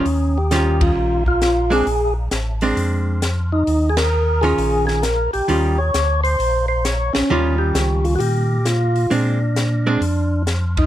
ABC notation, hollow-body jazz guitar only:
X:1
M:4/4
L:1/8
Q:"Swing" 1/4=132
K:Eb
V:1 name="Hollow-body jazz guitar"
z2 [E,G,_DF]3 z2 [A,C=D] | z3 [A,CD]3 z2 | z3 [E,_DF]3 z2 | [E,G,_DF] z6 z |
[E,G,_DF]4- [E,G,DF] z3 | [A,CD] z2 [A,CD] z4 |]